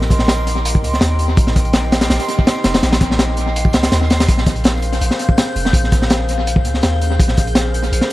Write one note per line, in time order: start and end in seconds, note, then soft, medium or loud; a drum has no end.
0.00 0.84 A#1 loud
0.00 0.81 D#4 loud
0.00 0.81 G4 medium
0.00 0.81 A#4 medium
0.00 0.81 D#5 medium
0.00 0.81 G5 loud
0.00 4.29 C6 medium
0.00 snare soft
0.10 kick medium
0.10 closed hi-hat medium
0.19 snare medium
0.28 snare loud
0.28 closed hi-hat medium
0.47 closed hi-hat medium
0.65 closed hi-hat medium
0.75 kick medium
0.83 0.99 C#2 medium
0.83 closed hi-hat medium
0.93 snare soft
1.01 1.36 D#2 medium
1.01 snare loud
1.01 closed hi-hat medium
1.19 closed hi-hat medium
1.37 2.09 A#1 medium
1.37 2.63 D#4 medium
1.37 2.63 G4 medium
1.37 2.63 A#4 medium
1.37 2.63 D#5 medium
1.37 2.63 G5 loud
1.37 kick loud
1.37 closed hi-hat medium
1.47 snare medium
1.56 kick medium
1.56 closed hi-hat medium
1.65 closed hi-hat soft
1.73 snare loud
1.73 closed hi-hat medium
1.92 snare loud
1.92 closed hi-hat medium
2.01 snare loud
2.01 closed hi-hat medium
2.10 2.19 A#1 medium
2.10 snare loud
2.10 closed hi-hat medium
2.20 closed hi-hat medium
2.28 closed hi-hat medium
2.39 kick medium
2.47 snare loud
2.47 closed hi-hat medium
2.64 2.81 F1 medium
2.64 snare medium
2.64 closed hi-hat medium
2.74 snare loud
2.74 closed hi-hat medium
2.82 3.75 A#1 loud
2.82 3.72 D#4 medium
2.82 3.72 G4 medium
2.82 3.72 A#4 medium
2.82 3.72 D#5 medium
2.82 3.72 G5 loud
2.82 snare medium
2.82 closed hi-hat medium
2.92 snare loud
2.92 closed hi-hat medium
3.01 kick medium
3.01 closed hi-hat medium
3.11 snare medium
3.19 snare loud
3.19 closed hi-hat medium
3.37 closed hi-hat medium
3.56 closed hi-hat medium
3.65 kick medium
3.73 3.90 C#2 medium
3.73 snare medium
3.73 closed hi-hat medium
3.83 snare medium
3.83 closed hi-hat medium
3.92 4.27 D#2 medium
3.92 snare loud
3.92 closed hi-hat medium
4.10 snare medium
4.10 closed hi-hat medium
4.20 snare loud
4.20 closed hi-hat medium
4.28 5.00 A#1 medium
4.28 5.54 C#4 medium
4.28 5.54 G#4 medium
4.28 5.54 A#4 medium
4.28 5.54 C5 medium
4.28 5.54 F5 loud
4.28 8.13 G6 medium
4.28 kick loud
4.28 closed hi-hat medium
4.37 snare soft
4.46 kick medium
4.46 closed hi-hat medium
4.56 closed hi-hat soft
4.64 snare loud
4.64 closed hi-hat medium
4.82 closed hi-hat medium
4.93 closed hi-hat soft
5.01 5.10 A#1 medium
5.01 closed hi-hat medium
5.11 snare medium
5.19 closed hi-hat medium
5.29 kick medium
5.38 snare loud
5.38 closed hi-hat medium
5.56 5.72 F1 medium
5.56 closed hi-hat medium
5.66 snare soft
5.73 6.66 A#1 medium
5.73 6.63 C#4 medium
5.73 6.63 G#4 medium
5.73 6.63 A#4 medium
5.73 6.63 C5 medium
5.73 6.63 F5 loud
5.73 kick loud
5.73 closed hi-hat medium
5.84 snare soft
5.92 kick medium
5.92 closed hi-hat medium
6.02 snare medium
6.10 snare loud
6.10 closed hi-hat medium
6.29 closed hi-hat medium
6.47 closed hi-hat medium
6.56 kick medium
6.65 6.81 C#2 medium
6.65 closed hi-hat medium
6.74 snare soft
6.83 7.18 D#2 medium
6.83 snare loud
6.83 closed hi-hat medium
7.01 closed hi-hat medium
7.19 7.91 A#1 loud
7.19 8.13 C#4 medium
7.19 8.13 G#4 medium
7.19 8.13 A#4 medium
7.19 8.13 C5 medium
7.19 8.13 F5 medium
7.19 kick loud
7.19 closed hi-hat medium
7.28 snare soft
7.37 kick medium
7.37 closed hi-hat medium
7.47 closed hi-hat soft
7.55 snare loud
7.55 closed hi-hat medium
7.74 closed hi-hat medium
7.83 closed hi-hat soft
7.92 8.01 A#1 medium
7.92 closed hi-hat medium
8.01 snare medium